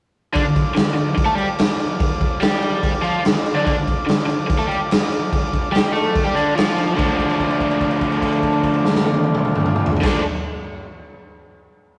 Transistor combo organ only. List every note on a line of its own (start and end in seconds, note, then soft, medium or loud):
0.32 3.60 F4 medium
0.32 3.61 A4 medium
0.32 3.62 D5 medium
3.65 6.93 F4 medium
3.65 6.94 A4 medium
3.65 6.94 D5 medium
6.96 9.93 F4 medium
6.96 9.93 A4 medium
6.96 9.93 D5 loud
10.03 10.20 F4 medium
10.03 10.20 A4 medium
10.03 10.20 D5 loud